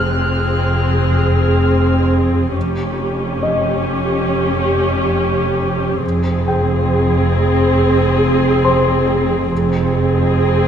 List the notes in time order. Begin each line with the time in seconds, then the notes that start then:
Already playing: F1 F2 C4 G#4 F6 F#6
2.55 F1 F2 C#4 G4
3.43 D#5
6.03 F1 F2 C4 G#4
6.48 G5
8.65 C5 C6
9.50 F1 F2 C4 G#4